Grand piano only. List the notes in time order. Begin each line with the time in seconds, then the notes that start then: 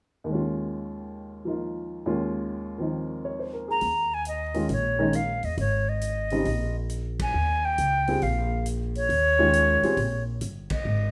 0.24 D#2 D#3
0.29 G#3 C#4
0.35 F4
1.45 F3 A#3 D#4 F4
2.06 D#2 D#3 G#3 C#4 F4
2.78 D#3 F3 C4 D#4
3.25 C#5
3.39 C5
3.53 A#4
3.68 G#4
4.54 D#3 G#3 C#4 F4
4.99 D#3 G#3 C#4 D#4
6.32 C#3 G3 C4 D#4
8.08 G3 C4 F4 G#4
9.39 D#3 G#3 C#4 F4
9.83 G3 C4 F4 G#4